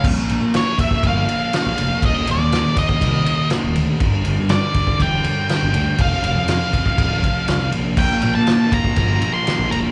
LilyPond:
<<
  \new Staff \with { instrumentName = "Lead electric guitar" } { \time 4/4 \key bes \lydian \tempo 4 = 121 r4 cis''8 e''8 f''2 | ees''8 d''4 ees''4. r4 | r4 d''4 g''2 | f''8 f''2. r8 |
g''8. a''8. bes''4~ bes''16 c'''8. bes''8 | }
  \new Staff \with { instrumentName = "Distorted electric guitar" } { \clef bass \time 4/4 \key bes \lydian r1 | r1 | r1 | r1 |
<bes, f bes>8 <bes, f bes>8 <bes, f bes>8 <bes, f bes>8 <bes, f bes>8 <bes, f bes>8 <bes, f bes>8 <bes, f bes>8 | }
  \new Staff \with { instrumentName = "Distorted electric guitar" } { \clef bass \time 4/4 \key bes \lydian <bes, f bes>8 <bes, f bes>8 <bes, f bes>8 <bes, f bes>8 <bes, f bes>8 <bes, f bes>8 <bes, f bes>8 <bes, f bes>8 | <ees, bes, ees>8 <ees, bes, ees>8 <ees, bes, ees>8 <ees, bes, ees>8 <ees, bes, ees>8 <ees, bes, ees>8 <ees, bes, ees>8 <ees, bes, ees>8 | <g, d g>8 <g, d g>8 <g, d g>8 <g, d g>8 <g, d g>8 <g, d g>8 <g, d g>8 <g, d g>8 | <f, c f>8 <f, c f>8 <f, c f>8 <f, c f>8 <f, c f>8 <f, c f>8 <f, c f>8 <f, c f>8 |
<bes, f bes>8 <bes, f bes>8 <bes, f bes>8 <bes, f bes>8 <bes, f bes>8 <bes, f bes>8 <bes, f bes>8 <bes, f bes>8 | }
  \new Staff \with { instrumentName = "Picked electric bass" } { \clef bass \time 4/4 \key bes \lydian bes,,16 r16 bes,,16 bes,8 r8. g,,8 r8. bes,,16 f,,16 r16 | ees,,16 r16 ees,,16 ees,8 r8. c,8 r8. ees,,16 d,16 r16 | g,,16 r16 g,,16 g,8 r8. e,,8 r8. g,,16 d,16 r16 | f,,16 r16 f,,16 f,8 r8. d,,8 r8 c,8 bes,,8 |
bes,,16 r16 bes,,16 bes,8 r8. g,,8 r8. bes,,16 e,,16 r16 | }
  \new DrumStaff \with { instrumentName = "Drums" } \drummode { \time 4/4 <cymc bd>8 cymr8 <cymr sn>8 <bd cymr>16 bd16 <bd cymr>8 cymr8 <cymr sn>8 cymr8 | <bd cymr>8 cymr8 <cymr sn>8 <bd cymr>16 bd16 <bd cymr>8 cymr8 <cymr sn>8 cymr8 | <bd cymr>8 cymr8 <cymr sn>8 <bd cymr>16 bd16 <bd cymr>8 cymr8 <cymr sn>8 cymr8 | <bd cymr>8 cymr8 <cymr sn>8 <bd cymr>16 bd16 <bd cymr>8 <bd cymr>8 <cymr sn>8 cymr8 |
<cymc bd>8 cymr8 <cymr sn>8 <bd cymr>16 bd16 <bd cymr>8 cymr8 <cymr sn>8 cymr8 | }
>>